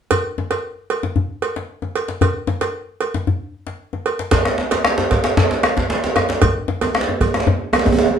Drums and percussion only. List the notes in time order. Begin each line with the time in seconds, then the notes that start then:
0.11 cowbell, djembe bass
0.38 djembe tone
0.51 cowbell, djembe slap
0.90 cowbell, djembe slap
1.03 djembe slap, djembe tone
1.16 djembe bass
1.42 cowbell
1.56 djembe slap
1.82 djembe tone
1.96 cowbell
2.08 djembe slap
2.21 cowbell, djembe bass
2.47 djembe tone
2.61 cowbell, djembe slap
3.01 cowbell, djembe slap
3.14 djembe slap, djembe tone
3.27 djembe bass
3.67 djembe slap
3.93 djembe tone
4.06 cowbell
4.19 djembe slap
4.31 bombo low, cowbell, djembe slap, djembe bass
4.45 bombo rim, djembe slap
4.58 bombo rim, djembe slap
4.71 bombo rim, cowbell, djembe slap
4.85 bombo rim, djembe slap
4.98 djembe slap, djembe tone
5.11 bombo low, cowbell, djembe slap
5.24 bombo rim, djembe slap
5.37 djembe slap, djembe tone, djembe bass
5.50 djembe slap
5.63 bombo rim, cowbell, djembe slap
5.77 bombo low, djembe slap, djembe tone
5.90 djembe slap
6.03 djembe slap
6.16 bombo rim, cowbell, djembe slap, djembe tone
6.29 bombo rim, djembe slap
6.42 bombo low, cowbell, djembe bass
6.68 djembe tone
6.81 bombo rim, cowbell, djembe slap, djembe tone
6.95 bombo rim, djembe slap
7.01 djembe slap
7.09 djembe tone
7.21 bombo low, cowbell, djembe tone
7.34 bombo rim, djembe slap
7.40 djembe slap
7.47 djembe tone, djembe bass
7.61 djembe slap
7.73 bombo rim, cowbell, djembe slap, djembe tone
7.79 djembe slap
7.86 bombo low, djembe slap, djembe tone
7.92 djembe tone
7.99 djembe slap
8.06 djembe tone
8.13 djembe slap